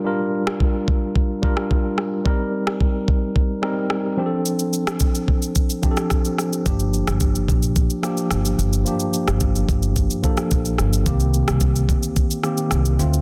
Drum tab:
SH |----------------|----------------|xxxxxx-xxxxxxxxx|xxxxxxxxxxxxxxxx|
SD |---r-------r--r-|---r------r-r---|---r-------rr-r-|---r------r-r---|
BD |----o-o-o-o-o---|o---o-o-o-------|----o-o-o-o-o---|o---o-o-o-------|

SH |xxxxxxxxxxxxxxxx|xxxxxxxxxxxxxxxx|
SD |---r-------r--r-|---r------r-r---|
BD |----o-o-o-o-o---|o---o-o-o-------|